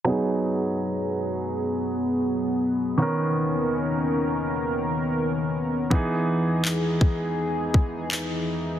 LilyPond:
<<
  \new Staff \with { instrumentName = "Analog synth pad" } { \time 4/4 \key gis \minor \tempo 4 = 82 <fis b gis'>1 | <dis cis' ais'>1 | <e dis' gis'>1 | }
  \new Staff \with { instrumentName = "Grand piano" } { \time 4/4 \key gis \minor <fis b dis' gis'>1 | <dis b cis' ais'>1 | <e b dis' gis'>1 | }
  \new DrumStaff \with { instrumentName = "Drums" } \drummode { \time 4/4 r4 r4 r4 r4 | r4 r4 r4 r4 | bd4 hc8 bd8 r8 bd8 hc4 | }
>>